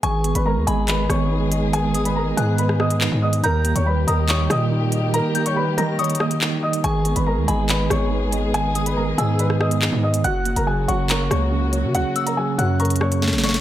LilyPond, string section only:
\new Staff \with { instrumentName = "String section" } { \time 4/4 \key gis \minor \tempo 4 = 141 << { <gis b gis'>1~ | <gis b gis'>1 | <g ais g'>1~ | <g ais g'>1 |
<gis b gis'>1~ | <gis b gis'>1 | <fis ais fis'>1~ | <fis ais fis'>1 | } \\ { dis1~ | dis1 | dis1~ | dis1~ |
dis1~ | dis1 | cis1~ | cis1 | } >> }